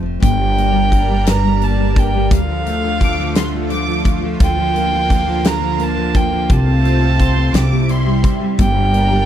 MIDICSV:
0, 0, Header, 1, 7, 480
1, 0, Start_track
1, 0, Tempo, 697107
1, 152, Time_signature, 6, 3, 24, 8
1, 6373, End_track
2, 0, Start_track
2, 0, Title_t, "Violin section"
2, 0, Program_c, 0, 48
2, 2072, Note_on_c, 0, 86, 93
2, 2295, Note_off_c, 0, 86, 0
2, 2314, Note_on_c, 0, 84, 81
2, 2421, Note_off_c, 0, 84, 0
2, 2551, Note_on_c, 0, 86, 102
2, 2887, Note_off_c, 0, 86, 0
2, 4957, Note_on_c, 0, 84, 83
2, 5179, Note_off_c, 0, 84, 0
2, 5197, Note_on_c, 0, 86, 90
2, 5435, Note_off_c, 0, 86, 0
2, 5443, Note_on_c, 0, 84, 91
2, 5798, Note_off_c, 0, 84, 0
2, 6373, End_track
3, 0, Start_track
3, 0, Title_t, "Violin"
3, 0, Program_c, 1, 40
3, 154, Note_on_c, 1, 79, 100
3, 879, Note_on_c, 1, 82, 97
3, 889, Note_off_c, 1, 79, 0
3, 1121, Note_on_c, 1, 81, 86
3, 1131, Note_off_c, 1, 82, 0
3, 1370, Note_on_c, 1, 79, 84
3, 1380, Note_off_c, 1, 81, 0
3, 1601, Note_off_c, 1, 79, 0
3, 1606, Note_on_c, 1, 77, 85
3, 2532, Note_off_c, 1, 77, 0
3, 3049, Note_on_c, 1, 79, 107
3, 3766, Note_on_c, 1, 82, 91
3, 3776, Note_off_c, 1, 79, 0
3, 4013, Note_on_c, 1, 81, 97
3, 4023, Note_off_c, 1, 82, 0
3, 4243, Note_on_c, 1, 79, 89
3, 4253, Note_off_c, 1, 81, 0
3, 4488, Note_on_c, 1, 81, 98
3, 4499, Note_off_c, 1, 79, 0
3, 5441, Note_off_c, 1, 81, 0
3, 5929, Note_on_c, 1, 79, 106
3, 6373, Note_off_c, 1, 79, 0
3, 6373, End_track
4, 0, Start_track
4, 0, Title_t, "Analog synth pad"
4, 0, Program_c, 2, 89
4, 154, Note_on_c, 2, 55, 74
4, 157, Note_on_c, 2, 62, 69
4, 160, Note_on_c, 2, 70, 82
4, 1579, Note_off_c, 2, 55, 0
4, 1580, Note_off_c, 2, 62, 0
4, 1582, Note_off_c, 2, 70, 0
4, 1586, Note_on_c, 2, 50, 73
4, 1591, Note_on_c, 2, 65, 83
4, 1593, Note_on_c, 2, 57, 67
4, 3015, Note_off_c, 2, 50, 0
4, 3018, Note_off_c, 2, 57, 0
4, 3033, Note_on_c, 2, 58, 64
4, 3038, Note_on_c, 2, 50, 75
4, 4445, Note_off_c, 2, 65, 0
4, 4459, Note_off_c, 2, 58, 0
4, 4461, Note_off_c, 2, 50, 0
4, 4468, Note_on_c, 2, 57, 69
4, 4470, Note_on_c, 2, 60, 70
4, 4470, Note_on_c, 2, 65, 85
4, 5184, Note_off_c, 2, 57, 0
4, 5184, Note_off_c, 2, 60, 0
4, 5185, Note_off_c, 2, 65, 0
4, 5185, Note_on_c, 2, 48, 71
4, 5186, Note_on_c, 2, 55, 68
4, 5189, Note_on_c, 2, 64, 87
4, 5903, Note_off_c, 2, 48, 0
4, 5904, Note_off_c, 2, 64, 0
4, 5915, Note_on_c, 2, 70, 80
4, 5916, Note_on_c, 2, 62, 66
4, 6373, Note_off_c, 2, 55, 0
4, 6373, Note_off_c, 2, 62, 0
4, 6373, Note_off_c, 2, 70, 0
4, 6373, End_track
5, 0, Start_track
5, 0, Title_t, "Nylon-string guitar"
5, 0, Program_c, 3, 24
5, 0, Note_on_c, 3, 41, 62
5, 0, Note_on_c, 3, 57, 56
5, 18, Note_on_c, 3, 53, 51
5, 136, Note_off_c, 3, 41, 0
5, 139, Note_on_c, 3, 43, 73
5, 193, Note_off_c, 3, 53, 0
5, 194, Note_off_c, 3, 57, 0
5, 259, Note_on_c, 3, 55, 58
5, 380, Note_on_c, 3, 58, 55
5, 492, Note_off_c, 3, 55, 0
5, 500, Note_on_c, 3, 55, 55
5, 614, Note_off_c, 3, 58, 0
5, 622, Note_on_c, 3, 58, 54
5, 734, Note_off_c, 3, 55, 0
5, 742, Note_on_c, 3, 55, 47
5, 859, Note_off_c, 3, 43, 0
5, 867, Note_on_c, 3, 43, 66
5, 978, Note_off_c, 3, 55, 0
5, 986, Note_on_c, 3, 55, 59
5, 1095, Note_off_c, 3, 58, 0
5, 1103, Note_on_c, 3, 58, 56
5, 1216, Note_off_c, 3, 55, 0
5, 1224, Note_on_c, 3, 55, 51
5, 1337, Note_off_c, 3, 58, 0
5, 1345, Note_on_c, 3, 58, 59
5, 1465, Note_off_c, 3, 55, 0
5, 1474, Note_on_c, 3, 55, 57
5, 1593, Note_on_c, 3, 50, 71
5, 1637, Note_off_c, 3, 58, 0
5, 1638, Note_off_c, 3, 43, 0
5, 1641, Note_off_c, 3, 55, 0
5, 1715, Note_on_c, 3, 53, 55
5, 1832, Note_on_c, 3, 57, 59
5, 1953, Note_off_c, 3, 53, 0
5, 1956, Note_on_c, 3, 53, 57
5, 2067, Note_off_c, 3, 57, 0
5, 2075, Note_on_c, 3, 57, 51
5, 2195, Note_off_c, 3, 53, 0
5, 2198, Note_on_c, 3, 53, 58
5, 2312, Note_off_c, 3, 50, 0
5, 2314, Note_on_c, 3, 50, 68
5, 2432, Note_off_c, 3, 53, 0
5, 2435, Note_on_c, 3, 53, 58
5, 2546, Note_off_c, 3, 57, 0
5, 2554, Note_on_c, 3, 57, 62
5, 2666, Note_off_c, 3, 53, 0
5, 2669, Note_on_c, 3, 53, 52
5, 2782, Note_off_c, 3, 57, 0
5, 2790, Note_on_c, 3, 57, 62
5, 2909, Note_off_c, 3, 53, 0
5, 2911, Note_on_c, 3, 53, 51
5, 3028, Note_off_c, 3, 50, 0
5, 3031, Note_on_c, 3, 50, 78
5, 3079, Note_off_c, 3, 57, 0
5, 3150, Note_off_c, 3, 53, 0
5, 3153, Note_on_c, 3, 53, 60
5, 3270, Note_on_c, 3, 58, 56
5, 3395, Note_off_c, 3, 53, 0
5, 3398, Note_on_c, 3, 53, 58
5, 3501, Note_off_c, 3, 58, 0
5, 3509, Note_on_c, 3, 58, 60
5, 3626, Note_off_c, 3, 53, 0
5, 3629, Note_on_c, 3, 53, 55
5, 3741, Note_off_c, 3, 50, 0
5, 3750, Note_on_c, 3, 50, 72
5, 3855, Note_off_c, 3, 53, 0
5, 3864, Note_on_c, 3, 53, 60
5, 3976, Note_off_c, 3, 58, 0
5, 3984, Note_on_c, 3, 58, 63
5, 4101, Note_off_c, 3, 53, 0
5, 4109, Note_on_c, 3, 53, 56
5, 4219, Note_off_c, 3, 58, 0
5, 4227, Note_on_c, 3, 58, 65
5, 4344, Note_off_c, 3, 53, 0
5, 4353, Note_on_c, 3, 53, 51
5, 4468, Note_off_c, 3, 50, 0
5, 4471, Note_on_c, 3, 48, 77
5, 4518, Note_off_c, 3, 58, 0
5, 4521, Note_off_c, 3, 53, 0
5, 4598, Note_on_c, 3, 60, 58
5, 4714, Note_on_c, 3, 65, 57
5, 4822, Note_off_c, 3, 60, 0
5, 4831, Note_on_c, 3, 60, 57
5, 4945, Note_off_c, 3, 65, 0
5, 4954, Note_on_c, 3, 65, 51
5, 5063, Note_off_c, 3, 60, 0
5, 5072, Note_on_c, 3, 60, 55
5, 5177, Note_off_c, 3, 48, 0
5, 5185, Note_on_c, 3, 48, 65
5, 5240, Note_off_c, 3, 60, 0
5, 5242, Note_off_c, 3, 65, 0
5, 5308, Note_on_c, 3, 55, 56
5, 5428, Note_on_c, 3, 60, 59
5, 5546, Note_off_c, 3, 55, 0
5, 5549, Note_on_c, 3, 55, 47
5, 5657, Note_off_c, 3, 60, 0
5, 5665, Note_on_c, 3, 60, 57
5, 5784, Note_off_c, 3, 55, 0
5, 5787, Note_on_c, 3, 55, 51
5, 5906, Note_on_c, 3, 43, 77
5, 5957, Note_off_c, 3, 60, 0
5, 5958, Note_off_c, 3, 48, 0
5, 6019, Note_off_c, 3, 55, 0
5, 6022, Note_on_c, 3, 55, 56
5, 6144, Note_on_c, 3, 58, 59
5, 6259, Note_off_c, 3, 55, 0
5, 6267, Note_on_c, 3, 55, 56
5, 6373, Note_off_c, 3, 43, 0
5, 6373, Note_off_c, 3, 55, 0
5, 6373, Note_off_c, 3, 58, 0
5, 6373, End_track
6, 0, Start_track
6, 0, Title_t, "Upright bass"
6, 0, Program_c, 4, 32
6, 0, Note_on_c, 4, 29, 92
6, 126, Note_off_c, 4, 29, 0
6, 155, Note_on_c, 4, 31, 101
6, 1566, Note_off_c, 4, 31, 0
6, 1592, Note_on_c, 4, 38, 96
6, 3005, Note_off_c, 4, 38, 0
6, 3032, Note_on_c, 4, 38, 89
6, 4445, Note_off_c, 4, 38, 0
6, 4475, Note_on_c, 4, 36, 101
6, 5167, Note_off_c, 4, 36, 0
6, 5189, Note_on_c, 4, 36, 96
6, 5644, Note_off_c, 4, 36, 0
6, 5917, Note_on_c, 4, 31, 102
6, 6373, Note_off_c, 4, 31, 0
6, 6373, End_track
7, 0, Start_track
7, 0, Title_t, "Drums"
7, 155, Note_on_c, 9, 36, 103
7, 159, Note_on_c, 9, 42, 72
7, 224, Note_off_c, 9, 36, 0
7, 228, Note_off_c, 9, 42, 0
7, 401, Note_on_c, 9, 42, 50
7, 470, Note_off_c, 9, 42, 0
7, 633, Note_on_c, 9, 36, 68
7, 638, Note_on_c, 9, 42, 52
7, 702, Note_off_c, 9, 36, 0
7, 707, Note_off_c, 9, 42, 0
7, 870, Note_on_c, 9, 42, 90
7, 878, Note_on_c, 9, 38, 105
7, 939, Note_off_c, 9, 42, 0
7, 947, Note_off_c, 9, 38, 0
7, 1113, Note_on_c, 9, 42, 51
7, 1181, Note_off_c, 9, 42, 0
7, 1352, Note_on_c, 9, 36, 88
7, 1359, Note_on_c, 9, 42, 49
7, 1421, Note_off_c, 9, 36, 0
7, 1428, Note_off_c, 9, 42, 0
7, 1592, Note_on_c, 9, 36, 107
7, 1593, Note_on_c, 9, 42, 75
7, 1661, Note_off_c, 9, 36, 0
7, 1662, Note_off_c, 9, 42, 0
7, 1835, Note_on_c, 9, 42, 51
7, 1904, Note_off_c, 9, 42, 0
7, 2072, Note_on_c, 9, 36, 77
7, 2077, Note_on_c, 9, 42, 51
7, 2141, Note_off_c, 9, 36, 0
7, 2146, Note_off_c, 9, 42, 0
7, 2308, Note_on_c, 9, 42, 90
7, 2316, Note_on_c, 9, 38, 108
7, 2377, Note_off_c, 9, 42, 0
7, 2385, Note_off_c, 9, 38, 0
7, 2548, Note_on_c, 9, 42, 50
7, 2617, Note_off_c, 9, 42, 0
7, 2790, Note_on_c, 9, 36, 86
7, 2794, Note_on_c, 9, 42, 45
7, 2859, Note_off_c, 9, 36, 0
7, 2863, Note_off_c, 9, 42, 0
7, 3032, Note_on_c, 9, 36, 108
7, 3032, Note_on_c, 9, 42, 71
7, 3101, Note_off_c, 9, 36, 0
7, 3101, Note_off_c, 9, 42, 0
7, 3276, Note_on_c, 9, 42, 54
7, 3345, Note_off_c, 9, 42, 0
7, 3513, Note_on_c, 9, 36, 76
7, 3519, Note_on_c, 9, 42, 49
7, 3582, Note_off_c, 9, 36, 0
7, 3588, Note_off_c, 9, 42, 0
7, 3749, Note_on_c, 9, 42, 88
7, 3757, Note_on_c, 9, 38, 106
7, 3818, Note_off_c, 9, 42, 0
7, 3826, Note_off_c, 9, 38, 0
7, 3990, Note_on_c, 9, 42, 50
7, 4059, Note_off_c, 9, 42, 0
7, 4233, Note_on_c, 9, 36, 90
7, 4238, Note_on_c, 9, 42, 49
7, 4302, Note_off_c, 9, 36, 0
7, 4307, Note_off_c, 9, 42, 0
7, 4474, Note_on_c, 9, 36, 108
7, 4474, Note_on_c, 9, 42, 71
7, 4543, Note_off_c, 9, 36, 0
7, 4543, Note_off_c, 9, 42, 0
7, 4717, Note_on_c, 9, 42, 50
7, 4786, Note_off_c, 9, 42, 0
7, 4955, Note_on_c, 9, 36, 72
7, 4960, Note_on_c, 9, 42, 47
7, 5023, Note_off_c, 9, 36, 0
7, 5029, Note_off_c, 9, 42, 0
7, 5191, Note_on_c, 9, 42, 93
7, 5199, Note_on_c, 9, 38, 113
7, 5260, Note_off_c, 9, 42, 0
7, 5268, Note_off_c, 9, 38, 0
7, 5433, Note_on_c, 9, 42, 52
7, 5502, Note_off_c, 9, 42, 0
7, 5673, Note_on_c, 9, 36, 89
7, 5677, Note_on_c, 9, 42, 50
7, 5742, Note_off_c, 9, 36, 0
7, 5746, Note_off_c, 9, 42, 0
7, 5912, Note_on_c, 9, 42, 74
7, 5914, Note_on_c, 9, 36, 106
7, 5981, Note_off_c, 9, 42, 0
7, 5983, Note_off_c, 9, 36, 0
7, 6155, Note_on_c, 9, 42, 50
7, 6224, Note_off_c, 9, 42, 0
7, 6373, End_track
0, 0, End_of_file